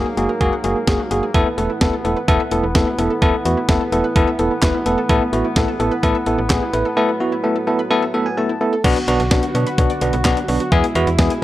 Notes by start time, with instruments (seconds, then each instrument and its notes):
Already playing: brass ensemble G#2 F#3 A#3
0.06 synth arpeggio sound G#4
0.17 fm bass F#1, synth arpeggio sound G#3, tine electric piano A#3 F#4 G#4, closed hi-hat
0.29 synth arpeggio sound A#4
0.41 fm bass F#1, synth arpeggio sound G#3, tine electric piano A#3 F#4 G#4, kick, closed hi-hat
0.53 synth arpeggio sound F#5
0.64 fm bass F#1, synth arpeggio sound G#3, tine electric piano A#3 F#4 G#4, closed hi-hat
0.76 synth arpeggio sound A#3
0.87 fm bass F#1, synth arpeggio sound G#3, tine electric piano A#3 F#4 G#4, kick, snare, closed hi-hat
0.99 synth arpeggio sound F#4
1.11 fm bass F#1, synth arpeggio sound G#3, tine electric piano A#3 F#4 G#4, closed hi-hat
1.23 synth arpeggio sound G#4
1.34 fm bass E1, brass ensemble A2 E3 B3, synth arpeggio sound A3, tine electric piano B3 E4 A4, kick, closed hi-hat
1.46 synth arpeggio sound B3
1.58 fm bass E1, synth arpeggio sound A3, tine electric piano B3 E4 A4, closed hi-hat
1.70 synth arpeggio sound E4
1.81 fm bass E1, synth arpeggio sound A3, tine electric piano B3 E4 A4, kick, snare, closed hi-hat
1.93 synth arpeggio sound A4
2.05 fm bass E1, synth arpeggio sound A3, tine electric piano B3 E4 A4, closed hi-hat
2.17 synth arpeggio sound B4
2.28 fm bass E1, synth arpeggio sound A3, tine electric piano B3 E4 A4, kick, closed hi-hat
2.40 synth arpeggio sound E5
2.51 fm bass E1, synth arpeggio sound A3, tine electric piano B3 E4 A4, closed hi-hat
2.63 fm bass E1, synth arpeggio sound B3
2.75 fm bass E1, synth arpeggio sound A3, tine electric piano B3 E4 A4, kick, snare, closed hi-hat
2.87 synth arpeggio sound E4
2.98 fm bass E1, synth arpeggio sound A3, tine electric piano B3 E4 A4, closed hi-hat
3.10 synth arpeggio sound A4
3.22 fm bass E1, synth arpeggio sound A3, tine electric piano B3 E4 A4, kick, closed hi-hat
3.34 synth arpeggio sound B3
3.45 fm bass E2, synth arpeggio sound A3, tine electric piano B3 E4 F#4, closed hi-hat
3.57 synth arpeggio sound E4
3.69 fm bass E1, synth arpeggio sound A3, tine electric piano B3 E4 A4, kick, snare, closed hi-hat
3.81 synth arpeggio sound A4
3.92 fm bass E1, synth arpeggio sound A3, tine electric piano B3 E4 A4, closed hi-hat
4.04 synth arpeggio sound B4
4.16 fm bass E1, synth arpeggio sound A3, tine electric piano B3 E4 A4, kick, closed hi-hat
4.27 synth arpeggio sound E5
4.39 fm bass E1, synth arpeggio sound A3, tine electric piano B3 E4 A4, closed hi-hat
4.51 synth arpeggio sound B3
4.62 fm bass E1, synth arpeggio sound A3, tine electric piano B3 E4 B4, kick, snare, clap, closed hi-hat
4.74 synth arpeggio sound E4
4.86 fm bass E1, synth arpeggio sound A3, tine electric piano B3 E4 A4, closed hi-hat
4.98 synth arpeggio sound A4
5.09 fm bass A1, synth arpeggio sound A3, tine electric piano B3 E4 A4, kick, closed hi-hat
5.21 synth arpeggio sound B3
5.33 fm bass A1, synth arpeggio sound A3, tine electric piano B3 E4 F#4, closed hi-hat
5.45 synth arpeggio sound E4
5.56 fm bass A1, synth arpeggio sound A3, tine electric piano B3 E4 A4, kick, snare, closed hi-hat
5.68 synth arpeggio sound A4
5.80 fm bass A1, synth arpeggio sound A3, tine electric piano B3 E4 A4, closed hi-hat
5.91 synth arpeggio sound B4
6.03 fm bass A1, synth arpeggio sound A3, tine electric piano B3 E4 A4, kick, closed hi-hat
6.15 synth arpeggio sound E5
6.26 fm bass A1, synth arpeggio sound A3, tine electric piano B3 E4 A4, closed hi-hat
6.38 fm bass A1, synth arpeggio sound B3
6.50 fm bass A1, synth arpeggio sound A3, tine electric piano B3 E4 G#4, kick, snare, clap, closed hi-hat
6.62 synth arpeggio sound E4
6.73 fm bass A1, synth arpeggio sound A3, tine electric piano B3 E4 B4, closed hi-hat
6.85 synth arpeggio sound A4
6.97 brass ensemble F#3, synth arpeggio sound A3, tine electric piano B3 E4 A4
7.09 synth arpeggio sound B3
7.20 synth arpeggio sound A3, tine electric piano B3 E4 F#4
7.32 synth arpeggio sound E4
7.44 synth arpeggio sound A3, tine electric piano B3 E4 A4
7.56 synth arpeggio sound A4
7.67 synth arpeggio sound A3, tine electric piano B3 E4 A4
7.79 synth arpeggio sound B4
7.91 synth arpeggio sound A3, tine electric piano B3 E4 A4
8.02 synth arpeggio sound E5
8.14 synth arpeggio sound A3, tine electric piano B3 E4 A4 E5
8.26 synth arpeggio sound B3, tine electric piano G#5
8.38 synth arpeggio sound A3, tine electric piano B3 E4 A4 A5
8.49 synth arpeggio sound E4
8.61 synth arpeggio sound A3, tine electric piano B3 E4 A4
8.73 synth arpeggio sound A4
8.84 fm bass B1, brass ensemble D3 B3 F#4, synth arpeggio sound F#3, tine electric piano B3 D4 F#4, kick, closed hi-hat, crash
8.96 synth arpeggio sound B3, closed hi-hat
9.08 fm bass B1, synth arpeggio sound F#3, tine electric piano B3 D4 F#4, closed hi-hat
9.20 fm bass B1, synth arpeggio sound D4, closed hi-hat
9.31 fm bass B1, synth arpeggio sound F#3, tine electric piano B3 D4 F#4, kick, snare, closed hi-hat
9.43 synth arpeggio sound F#4, closed hi-hat
9.55 fm bass B2, synth arpeggio sound F#3, tine electric piano B3 D4 F#4, closed hi-hat
9.67 synth arpeggio sound B4, closed hi-hat
9.78 fm bass B1, synth arpeggio sound F#3, tine electric piano B3 D4 F#4, kick, closed hi-hat
9.90 synth arpeggio sound D5, closed hi-hat
10.01 fm bass B1, synth arpeggio sound F#3, tine electric piano B3 D4 F#4, closed hi-hat
10.13 fm bass B1, synth arpeggio sound B3, closed hi-hat
10.25 fm bass B1, synth arpeggio sound F#3, tine electric piano B3 D4 F#4, kick, snare, clap, closed hi-hat
10.37 synth arpeggio sound D4, closed hi-hat
10.48 fm bass B1, synth arpeggio sound F#3, tine electric piano B3 D4 F#4, open hi-hat
10.60 synth arpeggio sound F#4, closed hi-hat
10.72 fm bass E2, brass ensemble B2 G#3 E4, synth arpeggio sound G#3, tine electric piano B3 E4 G#4, kick, closed hi-hat
10.84 synth arpeggio sound B3, closed hi-hat
10.95 fm bass E2, synth arpeggio sound G#3, tine electric piano B3 E4 F#4, closed hi-hat
11.07 fm bass E2, synth arpeggio sound E4, closed hi-hat
11.19 fm bass E2, synth arpeggio sound G#3, tine electric piano B3 E4 G#4, kick, snare, closed hi-hat
11.30 synth arpeggio sound G#4, closed hi-hat